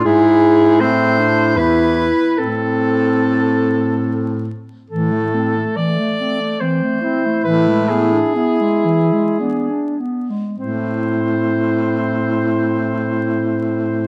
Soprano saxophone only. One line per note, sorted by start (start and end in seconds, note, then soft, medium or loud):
0.05 0.81 G#4 medium
0.80 1.58 C5 medium
1.57 2.39 B4 medium
2.38 4.49 A4 medium
4.90 5.78 A4 soft
5.76 6.62 D5 medium
6.60 7.44 C5 soft
7.44 7.90 B4 medium
7.88 10.00 G#4 medium
10.59 14.07 C5 soft